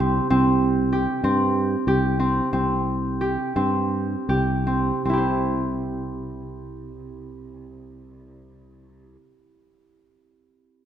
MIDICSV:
0, 0, Header, 1, 3, 480
1, 0, Start_track
1, 0, Key_signature, 0, "major"
1, 0, Tempo, 626305
1, 235, Time_signature, 7, 3, 24, 8
1, 1681, Tempo, 679502
1, 2641, Tempo, 731707
1, 3121, Tempo, 782269
1, 4081, Tempo, 803213
1, 7070, End_track
2, 0, Start_track
2, 0, Title_t, "Harp"
2, 0, Program_c, 0, 46
2, 0, Note_on_c, 0, 60, 56
2, 0, Note_on_c, 0, 67, 66
2, 230, Note_off_c, 0, 60, 0
2, 233, Note_on_c, 0, 60, 71
2, 706, Note_off_c, 0, 67, 0
2, 709, Note_on_c, 0, 67, 58
2, 946, Note_off_c, 0, 60, 0
2, 949, Note_on_c, 0, 60, 65
2, 1435, Note_off_c, 0, 67, 0
2, 1438, Note_on_c, 0, 67, 63
2, 1679, Note_off_c, 0, 60, 0
2, 1682, Note_on_c, 0, 60, 52
2, 1915, Note_off_c, 0, 60, 0
2, 1918, Note_on_c, 0, 60, 65
2, 2396, Note_off_c, 0, 67, 0
2, 2398, Note_on_c, 0, 67, 53
2, 2643, Note_off_c, 0, 60, 0
2, 2646, Note_on_c, 0, 60, 59
2, 3123, Note_off_c, 0, 67, 0
2, 3126, Note_on_c, 0, 67, 56
2, 3354, Note_off_c, 0, 60, 0
2, 3356, Note_on_c, 0, 60, 48
2, 3591, Note_off_c, 0, 60, 0
2, 3593, Note_on_c, 0, 60, 47
2, 3618, Note_on_c, 0, 64, 48
2, 3640, Note_off_c, 0, 67, 0
2, 3642, Note_on_c, 0, 67, 49
2, 3667, Note_on_c, 0, 72, 45
2, 6058, Note_off_c, 0, 60, 0
2, 6083, Note_off_c, 0, 64, 0
2, 6106, Note_off_c, 0, 67, 0
2, 6130, Note_off_c, 0, 72, 0
2, 7070, End_track
3, 0, Start_track
3, 0, Title_t, "Fretless electric bass"
3, 0, Program_c, 1, 35
3, 0, Note_on_c, 1, 36, 82
3, 147, Note_off_c, 1, 36, 0
3, 236, Note_on_c, 1, 36, 71
3, 809, Note_off_c, 1, 36, 0
3, 947, Note_on_c, 1, 43, 69
3, 1339, Note_off_c, 1, 43, 0
3, 1434, Note_on_c, 1, 36, 73
3, 1825, Note_off_c, 1, 36, 0
3, 1917, Note_on_c, 1, 36, 63
3, 2503, Note_off_c, 1, 36, 0
3, 2645, Note_on_c, 1, 43, 59
3, 3030, Note_off_c, 1, 43, 0
3, 3123, Note_on_c, 1, 36, 67
3, 3502, Note_off_c, 1, 36, 0
3, 3594, Note_on_c, 1, 36, 57
3, 6059, Note_off_c, 1, 36, 0
3, 7070, End_track
0, 0, End_of_file